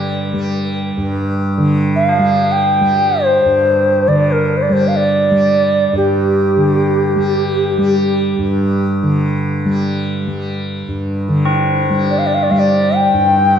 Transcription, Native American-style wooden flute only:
0, 0, Header, 1, 2, 480
1, 0, Start_track
1, 0, Tempo, 500000
1, 13048, End_track
2, 0, Start_track
2, 0, Title_t, "Native American-style wooden flute"
2, 0, Program_c, 0, 77
2, 1880, Note_on_c, 0, 77, 83
2, 2417, Note_on_c, 0, 79, 90
2, 2432, Note_off_c, 0, 77, 0
2, 3103, Note_on_c, 0, 72, 84
2, 3117, Note_off_c, 0, 79, 0
2, 3918, Note_on_c, 0, 74, 75
2, 3932, Note_off_c, 0, 72, 0
2, 4146, Note_on_c, 0, 70, 70
2, 4160, Note_off_c, 0, 74, 0
2, 4388, Note_on_c, 0, 72, 70
2, 4403, Note_off_c, 0, 70, 0
2, 4438, Note_on_c, 0, 74, 60
2, 4453, Note_off_c, 0, 72, 0
2, 4539, Note_on_c, 0, 72, 69
2, 4554, Note_off_c, 0, 74, 0
2, 4683, Note_on_c, 0, 77, 53
2, 4697, Note_off_c, 0, 72, 0
2, 4766, Note_on_c, 0, 74, 81
2, 4780, Note_off_c, 0, 77, 0
2, 5726, Note_off_c, 0, 74, 0
2, 5732, Note_on_c, 0, 67, 68
2, 8073, Note_off_c, 0, 67, 0
2, 11622, Note_on_c, 0, 74, 60
2, 11699, Note_on_c, 0, 77, 59
2, 11713, Note_off_c, 0, 74, 0
2, 11776, Note_on_c, 0, 74, 60
2, 11791, Note_off_c, 0, 77, 0
2, 11851, Note_on_c, 0, 77, 60
2, 11865, Note_off_c, 0, 74, 0
2, 11933, Note_on_c, 0, 74, 58
2, 11947, Note_off_c, 0, 77, 0
2, 12010, Note_on_c, 0, 77, 57
2, 12024, Note_off_c, 0, 74, 0
2, 12095, Note_on_c, 0, 74, 78
2, 12110, Note_off_c, 0, 77, 0
2, 12440, Note_on_c, 0, 79, 95
2, 12454, Note_off_c, 0, 74, 0
2, 13048, Note_off_c, 0, 79, 0
2, 13048, End_track
0, 0, End_of_file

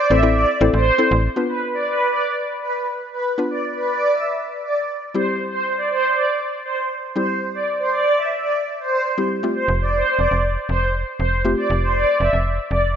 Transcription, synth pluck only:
0, 0, Header, 1, 2, 480
1, 0, Start_track
1, 0, Tempo, 504202
1, 1299, Time_signature, 4, 2, 24, 8
1, 12341, End_track
2, 0, Start_track
2, 0, Title_t, "Synth pluck"
2, 0, Program_c, 0, 84
2, 101, Note_on_c, 0, 60, 79
2, 102, Note_on_c, 0, 64, 78
2, 103, Note_on_c, 0, 69, 74
2, 105, Note_on_c, 0, 72, 91
2, 175, Note_off_c, 0, 60, 0
2, 175, Note_off_c, 0, 64, 0
2, 176, Note_off_c, 0, 69, 0
2, 176, Note_off_c, 0, 72, 0
2, 217, Note_on_c, 0, 60, 84
2, 219, Note_on_c, 0, 64, 77
2, 220, Note_on_c, 0, 69, 77
2, 222, Note_on_c, 0, 74, 90
2, 441, Note_off_c, 0, 60, 0
2, 442, Note_off_c, 0, 64, 0
2, 443, Note_off_c, 0, 69, 0
2, 444, Note_off_c, 0, 74, 0
2, 578, Note_on_c, 0, 60, 85
2, 580, Note_on_c, 0, 64, 80
2, 583, Note_on_c, 0, 69, 82
2, 583, Note_on_c, 0, 72, 99
2, 802, Note_off_c, 0, 60, 0
2, 803, Note_off_c, 0, 64, 0
2, 804, Note_off_c, 0, 69, 0
2, 804, Note_off_c, 0, 72, 0
2, 936, Note_on_c, 0, 60, 88
2, 938, Note_on_c, 0, 64, 85
2, 941, Note_on_c, 0, 69, 83
2, 942, Note_on_c, 0, 72, 99
2, 1235, Note_off_c, 0, 60, 0
2, 1236, Note_off_c, 0, 64, 0
2, 1238, Note_off_c, 0, 69, 0
2, 1238, Note_off_c, 0, 72, 0
2, 1296, Note_on_c, 0, 59, 66
2, 1299, Note_on_c, 0, 62, 61
2, 1302, Note_on_c, 0, 65, 61
2, 1305, Note_on_c, 0, 71, 69
2, 3180, Note_off_c, 0, 59, 0
2, 3181, Note_off_c, 0, 62, 0
2, 3183, Note_off_c, 0, 65, 0
2, 3184, Note_off_c, 0, 71, 0
2, 3216, Note_on_c, 0, 59, 67
2, 3219, Note_on_c, 0, 62, 61
2, 3223, Note_on_c, 0, 65, 58
2, 3227, Note_on_c, 0, 71, 72
2, 4864, Note_off_c, 0, 59, 0
2, 4866, Note_off_c, 0, 62, 0
2, 4868, Note_off_c, 0, 65, 0
2, 4870, Note_off_c, 0, 71, 0
2, 4897, Note_on_c, 0, 55, 66
2, 4900, Note_on_c, 0, 60, 59
2, 4903, Note_on_c, 0, 64, 59
2, 4907, Note_on_c, 0, 67, 72
2, 6780, Note_off_c, 0, 55, 0
2, 6782, Note_off_c, 0, 60, 0
2, 6783, Note_off_c, 0, 64, 0
2, 6785, Note_off_c, 0, 67, 0
2, 6813, Note_on_c, 0, 55, 67
2, 6816, Note_on_c, 0, 60, 58
2, 6818, Note_on_c, 0, 64, 56
2, 6823, Note_on_c, 0, 67, 74
2, 8698, Note_off_c, 0, 55, 0
2, 8700, Note_off_c, 0, 60, 0
2, 8701, Note_off_c, 0, 64, 0
2, 8703, Note_off_c, 0, 67, 0
2, 8736, Note_on_c, 0, 55, 57
2, 8737, Note_on_c, 0, 60, 52
2, 8739, Note_on_c, 0, 64, 51
2, 8741, Note_on_c, 0, 67, 63
2, 8969, Note_off_c, 0, 60, 0
2, 8974, Note_off_c, 0, 67, 0
2, 8978, Note_off_c, 0, 55, 0
2, 8978, Note_on_c, 0, 57, 63
2, 8980, Note_off_c, 0, 64, 0
2, 8980, Note_on_c, 0, 60, 59
2, 8984, Note_on_c, 0, 65, 58
2, 8986, Note_on_c, 0, 67, 72
2, 10861, Note_off_c, 0, 57, 0
2, 10862, Note_off_c, 0, 60, 0
2, 10864, Note_off_c, 0, 65, 0
2, 10865, Note_off_c, 0, 67, 0
2, 10896, Note_on_c, 0, 57, 66
2, 10898, Note_on_c, 0, 60, 60
2, 10902, Note_on_c, 0, 65, 60
2, 10905, Note_on_c, 0, 67, 70
2, 12341, Note_off_c, 0, 57, 0
2, 12341, Note_off_c, 0, 60, 0
2, 12341, Note_off_c, 0, 65, 0
2, 12341, Note_off_c, 0, 67, 0
2, 12341, End_track
0, 0, End_of_file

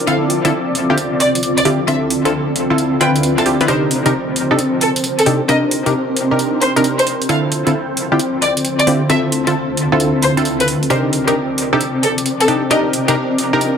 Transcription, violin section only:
0, 0, Header, 1, 2, 480
1, 0, Start_track
1, 0, Tempo, 451128
1, 80, Time_signature, 4, 2, 24, 8
1, 14657, End_track
2, 0, Start_track
2, 0, Title_t, "Violin section"
2, 0, Program_c, 0, 48
2, 76, Note_on_c, 0, 77, 91
2, 161, Note_off_c, 0, 77, 0
2, 1280, Note_on_c, 0, 74, 85
2, 1365, Note_off_c, 0, 74, 0
2, 1676, Note_on_c, 0, 74, 91
2, 1761, Note_off_c, 0, 74, 0
2, 1999, Note_on_c, 0, 76, 89
2, 2084, Note_off_c, 0, 76, 0
2, 3199, Note_on_c, 0, 79, 86
2, 3285, Note_off_c, 0, 79, 0
2, 3597, Note_on_c, 0, 81, 85
2, 3682, Note_off_c, 0, 81, 0
2, 3918, Note_on_c, 0, 72, 86
2, 4003, Note_off_c, 0, 72, 0
2, 5121, Note_on_c, 0, 69, 85
2, 5206, Note_off_c, 0, 69, 0
2, 5517, Note_on_c, 0, 69, 89
2, 5602, Note_off_c, 0, 69, 0
2, 5838, Note_on_c, 0, 75, 92
2, 5923, Note_off_c, 0, 75, 0
2, 7039, Note_on_c, 0, 72, 90
2, 7124, Note_off_c, 0, 72, 0
2, 7435, Note_on_c, 0, 72, 88
2, 7521, Note_off_c, 0, 72, 0
2, 7758, Note_on_c, 0, 77, 89
2, 7843, Note_off_c, 0, 77, 0
2, 8959, Note_on_c, 0, 74, 88
2, 9044, Note_off_c, 0, 74, 0
2, 9357, Note_on_c, 0, 74, 92
2, 9443, Note_off_c, 0, 74, 0
2, 9679, Note_on_c, 0, 76, 91
2, 9764, Note_off_c, 0, 76, 0
2, 10880, Note_on_c, 0, 72, 85
2, 10965, Note_off_c, 0, 72, 0
2, 11277, Note_on_c, 0, 71, 85
2, 11362, Note_off_c, 0, 71, 0
2, 11598, Note_on_c, 0, 72, 91
2, 11683, Note_off_c, 0, 72, 0
2, 12800, Note_on_c, 0, 69, 84
2, 12885, Note_off_c, 0, 69, 0
2, 13199, Note_on_c, 0, 69, 90
2, 13284, Note_off_c, 0, 69, 0
2, 13520, Note_on_c, 0, 75, 89
2, 13605, Note_off_c, 0, 75, 0
2, 14657, End_track
0, 0, End_of_file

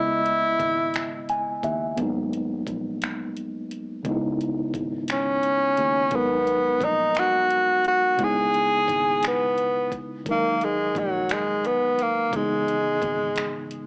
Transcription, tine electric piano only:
0, 0, Header, 1, 2, 480
1, 0, Start_track
1, 0, Tempo, 689655
1, 1377, Time_signature, 6, 3, 24, 8
1, 9651, End_track
2, 0, Start_track
2, 0, Title_t, "Tine electric piano"
2, 0, Program_c, 0, 4
2, 0, Note_on_c, 0, 49, 49
2, 0, Note_on_c, 0, 56, 47
2, 0, Note_on_c, 0, 59, 49
2, 0, Note_on_c, 0, 64, 51
2, 0, Note_on_c, 0, 75, 57
2, 66, Control_c, 0, 64, 127
2, 902, Note_on_c, 0, 80, 64
2, 1123, Note_off_c, 0, 80, 0
2, 1143, Note_on_c, 0, 76, 62
2, 1343, Note_off_c, 0, 49, 0
2, 1348, Note_off_c, 0, 64, 0
2, 1352, Note_off_c, 0, 56, 0
2, 1357, Note_off_c, 0, 59, 0
2, 1364, Note_off_c, 0, 76, 0
2, 1366, Note_off_c, 0, 75, 0
2, 1368, Note_on_c, 0, 59, 68
2, 1375, Note_on_c, 0, 54, 59
2, 1386, Control_c, 0, 64, 0
2, 1387, Note_on_c, 0, 56, 64
2, 1399, Note_on_c, 0, 58, 58
2, 1409, Note_on_c, 0, 63, 65
2, 1501, Control_c, 0, 64, 127
2, 2785, Note_off_c, 0, 59, 0
2, 2788, Note_off_c, 0, 54, 0
2, 2794, Note_off_c, 0, 56, 0
2, 2800, Note_off_c, 0, 58, 0
2, 2804, Note_on_c, 0, 49, 64
2, 2805, Note_off_c, 0, 63, 0
2, 2814, Note_on_c, 0, 51, 50
2, 2825, Control_c, 0, 64, 0
2, 2825, Note_on_c, 0, 56, 54
2, 2836, Note_on_c, 0, 59, 63
2, 2846, Note_on_c, 0, 63, 72
2, 2860, Note_on_c, 0, 64, 59
2, 2861, Note_off_c, 0, 51, 0
2, 2954, Control_c, 0, 64, 127
2, 4223, Note_off_c, 0, 49, 0
2, 4232, Note_off_c, 0, 59, 0
2, 4233, Note_off_c, 0, 56, 0
2, 4240, Note_on_c, 0, 59, 56
2, 4244, Note_off_c, 0, 63, 0
2, 4251, Note_off_c, 0, 64, 0
2, 4253, Note_on_c, 0, 54, 46
2, 4265, Note_on_c, 0, 56, 47
2, 4267, Control_c, 0, 64, 0
2, 4277, Note_on_c, 0, 70, 51
2, 4286, Note_on_c, 0, 63, 57
2, 4378, Control_c, 0, 64, 127
2, 5661, Note_off_c, 0, 59, 0
2, 5667, Note_off_c, 0, 54, 0
2, 5673, Note_off_c, 0, 56, 0
2, 5679, Note_off_c, 0, 70, 0
2, 5684, Note_off_c, 0, 63, 0
2, 5684, Note_on_c, 0, 49, 55
2, 5695, Note_on_c, 0, 64, 50
2, 5706, Control_c, 0, 64, 0
2, 5706, Note_on_c, 0, 56, 52
2, 5719, Note_on_c, 0, 59, 52
2, 5729, Note_on_c, 0, 63, 58
2, 5837, Control_c, 0, 64, 127
2, 7102, Note_off_c, 0, 49, 0
2, 7108, Note_off_c, 0, 64, 0
2, 7114, Note_off_c, 0, 56, 0
2, 7120, Note_off_c, 0, 59, 0
2, 7125, Note_off_c, 0, 63, 0
2, 7128, Note_on_c, 0, 51, 55
2, 7136, Note_on_c, 0, 54, 48
2, 7146, Control_c, 0, 64, 0
2, 7146, Note_on_c, 0, 56, 49
2, 7161, Note_on_c, 0, 70, 48
2, 7173, Note_on_c, 0, 63, 58
2, 7286, Control_c, 0, 64, 127
2, 8545, Note_off_c, 0, 51, 0
2, 8549, Note_off_c, 0, 54, 0
2, 8554, Note_off_c, 0, 56, 0
2, 8561, Note_off_c, 0, 70, 0
2, 8565, Note_on_c, 0, 49, 58
2, 8567, Note_off_c, 0, 63, 0
2, 8575, Note_on_c, 0, 52, 46
2, 8583, Note_on_c, 0, 56, 47
2, 8587, Control_c, 0, 64, 0
2, 8595, Note_on_c, 0, 59, 50
2, 8608, Note_on_c, 0, 63, 56
2, 8727, Control_c, 0, 64, 127
2, 9651, Note_off_c, 0, 49, 0
2, 9651, Note_off_c, 0, 52, 0
2, 9651, Note_off_c, 0, 56, 0
2, 9651, Note_off_c, 0, 59, 0
2, 9651, Note_off_c, 0, 63, 0
2, 9651, End_track
0, 0, End_of_file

